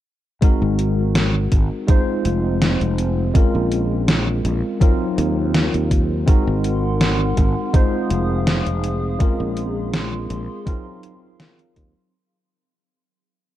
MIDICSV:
0, 0, Header, 1, 6, 480
1, 0, Start_track
1, 0, Tempo, 731707
1, 277, Time_signature, 4, 2, 24, 8
1, 8896, End_track
2, 0, Start_track
2, 0, Title_t, "Ambient pad"
2, 0, Program_c, 0, 92
2, 4118, Note_on_c, 0, 70, 80
2, 4118, Note_on_c, 0, 84, 87
2, 4119, Note_on_c, 0, 78, 71
2, 5068, Note_off_c, 0, 70, 0
2, 5068, Note_off_c, 0, 84, 0
2, 5069, Note_off_c, 0, 78, 0
2, 5075, Note_on_c, 0, 68, 76
2, 5075, Note_on_c, 0, 77, 69
2, 5075, Note_on_c, 0, 87, 85
2, 6027, Note_off_c, 0, 77, 0
2, 6027, Note_off_c, 0, 87, 0
2, 6038, Note_on_c, 0, 84, 86
2, 6977, Note_off_c, 0, 68, 0
2, 6996, Note_on_c, 0, 54, 76
2, 6997, Note_on_c, 0, 77, 69
2, 7939, Note_off_c, 0, 84, 0
2, 7948, Note_off_c, 0, 54, 0
2, 7948, Note_off_c, 0, 77, 0
2, 8896, End_track
3, 0, Start_track
3, 0, Title_t, "Tine electric piano"
3, 0, Program_c, 1, 4
3, 269, Note_on_c, 1, 56, 75
3, 274, Note_on_c, 1, 60, 64
3, 278, Note_on_c, 1, 63, 68
3, 284, Note_on_c, 1, 66, 68
3, 289, Note_on_c, 1, 70, 81
3, 412, Control_c, 1, 64, 127
3, 1189, Note_off_c, 1, 56, 0
3, 1191, Note_off_c, 1, 60, 0
3, 1193, Note_off_c, 1, 63, 0
3, 1196, Note_off_c, 1, 66, 0
3, 1198, Note_off_c, 1, 70, 0
3, 1228, Note_on_c, 1, 56, 79
3, 1233, Note_on_c, 1, 60, 69
3, 1238, Note_on_c, 1, 63, 71
3, 1243, Note_on_c, 1, 65, 69
3, 1245, Control_c, 1, 64, 0
3, 1247, Note_on_c, 1, 72, 89
3, 1366, Control_c, 1, 64, 127
3, 2148, Note_off_c, 1, 56, 0
3, 2151, Note_off_c, 1, 60, 0
3, 2153, Note_off_c, 1, 63, 0
3, 2155, Note_off_c, 1, 65, 0
3, 2158, Note_off_c, 1, 72, 0
3, 2188, Note_on_c, 1, 56, 74
3, 2193, Note_on_c, 1, 60, 70
3, 2198, Note_on_c, 1, 61, 70
3, 2203, Note_on_c, 1, 65, 69
3, 2206, Control_c, 1, 64, 0
3, 2208, Note_on_c, 1, 70, 82
3, 2326, Control_c, 1, 64, 127
3, 3108, Note_off_c, 1, 56, 0
3, 3111, Note_off_c, 1, 60, 0
3, 3113, Note_off_c, 1, 61, 0
3, 3116, Note_off_c, 1, 65, 0
3, 3118, Note_off_c, 1, 70, 0
3, 3148, Note_on_c, 1, 54, 78
3, 3152, Note_on_c, 1, 60, 77
3, 3156, Note_on_c, 1, 63, 72
3, 3162, Note_on_c, 1, 65, 73
3, 3165, Control_c, 1, 64, 0
3, 3166, Note_on_c, 1, 70, 85
3, 3279, Control_c, 1, 64, 127
3, 4068, Note_off_c, 1, 54, 0
3, 4070, Note_off_c, 1, 60, 0
3, 4072, Note_off_c, 1, 63, 0
3, 4075, Note_off_c, 1, 65, 0
3, 4077, Note_off_c, 1, 70, 0
3, 4108, Note_on_c, 1, 56, 79
3, 4111, Note_on_c, 1, 60, 72
3, 4117, Note_on_c, 1, 63, 69
3, 4122, Note_on_c, 1, 66, 71
3, 4126, Control_c, 1, 64, 0
3, 4127, Note_on_c, 1, 70, 83
3, 4227, Control_c, 1, 64, 127
3, 5028, Note_off_c, 1, 56, 0
3, 5030, Note_off_c, 1, 60, 0
3, 5033, Note_off_c, 1, 63, 0
3, 5035, Note_off_c, 1, 66, 0
3, 5037, Note_off_c, 1, 70, 0
3, 5069, Note_on_c, 1, 56, 79
3, 5073, Note_on_c, 1, 60, 71
3, 5077, Note_on_c, 1, 63, 73
3, 5083, Note_on_c, 1, 65, 70
3, 5086, Control_c, 1, 64, 0
3, 5088, Note_on_c, 1, 72, 91
3, 5208, Control_c, 1, 64, 127
3, 5989, Note_off_c, 1, 56, 0
3, 5991, Note_off_c, 1, 60, 0
3, 5993, Note_off_c, 1, 63, 0
3, 5996, Note_off_c, 1, 65, 0
3, 5998, Note_off_c, 1, 72, 0
3, 6028, Note_on_c, 1, 56, 77
3, 6032, Note_on_c, 1, 60, 68
3, 6039, Note_on_c, 1, 61, 69
3, 6043, Note_on_c, 1, 65, 72
3, 6046, Control_c, 1, 64, 0
3, 6049, Note_on_c, 1, 70, 85
3, 6166, Control_c, 1, 64, 127
3, 6948, Note_off_c, 1, 56, 0
3, 6950, Note_off_c, 1, 60, 0
3, 6953, Note_off_c, 1, 61, 0
3, 6956, Note_off_c, 1, 65, 0
3, 6959, Note_off_c, 1, 70, 0
3, 6988, Note_on_c, 1, 54, 80
3, 6993, Note_on_c, 1, 60, 70
3, 6998, Note_on_c, 1, 63, 76
3, 7003, Note_on_c, 1, 65, 74
3, 7006, Control_c, 1, 64, 0
3, 7007, Note_on_c, 1, 70, 89
3, 7113, Control_c, 1, 64, 127
3, 7908, Note_off_c, 1, 54, 0
3, 7911, Note_off_c, 1, 60, 0
3, 7913, Note_off_c, 1, 63, 0
3, 7916, Note_off_c, 1, 65, 0
3, 7918, Note_off_c, 1, 70, 0
3, 7965, Control_c, 1, 64, 0
3, 8896, End_track
4, 0, Start_track
4, 0, Title_t, "Fretless electric bass"
4, 0, Program_c, 2, 35
4, 406, Note_on_c, 2, 32, 92
4, 969, Note_off_c, 2, 32, 0
4, 997, Note_on_c, 2, 32, 90
4, 1105, Note_off_c, 2, 32, 0
4, 1478, Note_on_c, 2, 29, 93
4, 1814, Note_off_c, 2, 29, 0
4, 1845, Note_on_c, 2, 29, 82
4, 2169, Note_off_c, 2, 29, 0
4, 2327, Note_on_c, 2, 34, 96
4, 2890, Note_off_c, 2, 34, 0
4, 2918, Note_on_c, 2, 34, 95
4, 3026, Note_off_c, 2, 34, 0
4, 3398, Note_on_c, 2, 39, 99
4, 3734, Note_off_c, 2, 39, 0
4, 3768, Note_on_c, 2, 39, 85
4, 4090, Note_off_c, 2, 39, 0
4, 4247, Note_on_c, 2, 32, 94
4, 4810, Note_off_c, 2, 32, 0
4, 4837, Note_on_c, 2, 32, 98
4, 4945, Note_off_c, 2, 32, 0
4, 5318, Note_on_c, 2, 29, 96
4, 5654, Note_off_c, 2, 29, 0
4, 5685, Note_on_c, 2, 29, 83
4, 6009, Note_off_c, 2, 29, 0
4, 6167, Note_on_c, 2, 34, 98
4, 6730, Note_off_c, 2, 34, 0
4, 6760, Note_on_c, 2, 34, 95
4, 6866, Note_off_c, 2, 34, 0
4, 7717, Note_on_c, 2, 39, 82
4, 7825, Note_off_c, 2, 39, 0
4, 8896, End_track
5, 0, Start_track
5, 0, Title_t, "Muted fretless electric bass strokes"
5, 278, Note_on_c, 9, 29, 38
5, 343, Note_off_c, 9, 29, 0
5, 4118, Note_on_c, 9, 29, 40
5, 4184, Note_off_c, 9, 29, 0
5, 8896, End_track
6, 0, Start_track
6, 0, Title_t, "Drums"
6, 277, Note_on_c, 9, 36, 116
6, 277, Note_on_c, 9, 42, 76
6, 342, Note_off_c, 9, 36, 0
6, 342, Note_off_c, 9, 42, 0
6, 517, Note_on_c, 9, 42, 67
6, 583, Note_off_c, 9, 42, 0
6, 756, Note_on_c, 9, 38, 114
6, 756, Note_on_c, 9, 42, 77
6, 822, Note_off_c, 9, 38, 0
6, 822, Note_off_c, 9, 42, 0
6, 995, Note_on_c, 9, 42, 67
6, 997, Note_on_c, 9, 36, 63
6, 1061, Note_off_c, 9, 42, 0
6, 1062, Note_off_c, 9, 36, 0
6, 1236, Note_on_c, 9, 42, 77
6, 1237, Note_on_c, 9, 36, 120
6, 1301, Note_off_c, 9, 42, 0
6, 1302, Note_off_c, 9, 36, 0
6, 1476, Note_on_c, 9, 42, 68
6, 1542, Note_off_c, 9, 42, 0
6, 1716, Note_on_c, 9, 38, 111
6, 1716, Note_on_c, 9, 42, 75
6, 1782, Note_off_c, 9, 38, 0
6, 1782, Note_off_c, 9, 42, 0
6, 1845, Note_on_c, 9, 42, 35
6, 1910, Note_off_c, 9, 42, 0
6, 1957, Note_on_c, 9, 42, 67
6, 2023, Note_off_c, 9, 42, 0
6, 2197, Note_on_c, 9, 36, 119
6, 2197, Note_on_c, 9, 42, 81
6, 2263, Note_off_c, 9, 36, 0
6, 2263, Note_off_c, 9, 42, 0
6, 2437, Note_on_c, 9, 42, 67
6, 2503, Note_off_c, 9, 42, 0
6, 2677, Note_on_c, 9, 38, 120
6, 2677, Note_on_c, 9, 42, 81
6, 2743, Note_off_c, 9, 38, 0
6, 2743, Note_off_c, 9, 42, 0
6, 2918, Note_on_c, 9, 42, 66
6, 2984, Note_off_c, 9, 42, 0
6, 3157, Note_on_c, 9, 36, 116
6, 3159, Note_on_c, 9, 42, 76
6, 3222, Note_off_c, 9, 36, 0
6, 3225, Note_off_c, 9, 42, 0
6, 3399, Note_on_c, 9, 42, 68
6, 3464, Note_off_c, 9, 42, 0
6, 3637, Note_on_c, 9, 38, 114
6, 3637, Note_on_c, 9, 42, 72
6, 3703, Note_off_c, 9, 38, 0
6, 3703, Note_off_c, 9, 42, 0
6, 3767, Note_on_c, 9, 42, 36
6, 3832, Note_off_c, 9, 42, 0
6, 3877, Note_on_c, 9, 36, 61
6, 3878, Note_on_c, 9, 42, 68
6, 3943, Note_off_c, 9, 36, 0
6, 3943, Note_off_c, 9, 42, 0
6, 4117, Note_on_c, 9, 36, 122
6, 4117, Note_on_c, 9, 42, 84
6, 4183, Note_off_c, 9, 36, 0
6, 4183, Note_off_c, 9, 42, 0
6, 4358, Note_on_c, 9, 42, 63
6, 4424, Note_off_c, 9, 42, 0
6, 4597, Note_on_c, 9, 38, 121
6, 4597, Note_on_c, 9, 42, 77
6, 4663, Note_off_c, 9, 38, 0
6, 4663, Note_off_c, 9, 42, 0
6, 4836, Note_on_c, 9, 42, 66
6, 4837, Note_on_c, 9, 36, 65
6, 4902, Note_off_c, 9, 42, 0
6, 4903, Note_off_c, 9, 36, 0
6, 5077, Note_on_c, 9, 36, 125
6, 5077, Note_on_c, 9, 42, 74
6, 5142, Note_off_c, 9, 36, 0
6, 5143, Note_off_c, 9, 42, 0
6, 5317, Note_on_c, 9, 42, 67
6, 5382, Note_off_c, 9, 42, 0
6, 5557, Note_on_c, 9, 38, 118
6, 5557, Note_on_c, 9, 42, 80
6, 5622, Note_off_c, 9, 38, 0
6, 5622, Note_off_c, 9, 42, 0
6, 5685, Note_on_c, 9, 42, 35
6, 5750, Note_off_c, 9, 42, 0
6, 5797, Note_on_c, 9, 42, 66
6, 5863, Note_off_c, 9, 42, 0
6, 6036, Note_on_c, 9, 42, 77
6, 6037, Note_on_c, 9, 36, 120
6, 6102, Note_off_c, 9, 36, 0
6, 6102, Note_off_c, 9, 42, 0
6, 6276, Note_on_c, 9, 42, 65
6, 6342, Note_off_c, 9, 42, 0
6, 6517, Note_on_c, 9, 38, 123
6, 6517, Note_on_c, 9, 42, 75
6, 6583, Note_off_c, 9, 38, 0
6, 6583, Note_off_c, 9, 42, 0
6, 6758, Note_on_c, 9, 42, 64
6, 6823, Note_off_c, 9, 42, 0
6, 6997, Note_on_c, 9, 36, 126
6, 6998, Note_on_c, 9, 42, 75
6, 7063, Note_off_c, 9, 36, 0
6, 7064, Note_off_c, 9, 42, 0
6, 7237, Note_on_c, 9, 42, 66
6, 7303, Note_off_c, 9, 42, 0
6, 7477, Note_on_c, 9, 38, 117
6, 7477, Note_on_c, 9, 42, 69
6, 7542, Note_off_c, 9, 38, 0
6, 7542, Note_off_c, 9, 42, 0
6, 7604, Note_on_c, 9, 42, 34
6, 7670, Note_off_c, 9, 42, 0
6, 7716, Note_on_c, 9, 42, 65
6, 7717, Note_on_c, 9, 36, 66
6, 7782, Note_off_c, 9, 42, 0
6, 7783, Note_off_c, 9, 36, 0
6, 8896, End_track
0, 0, End_of_file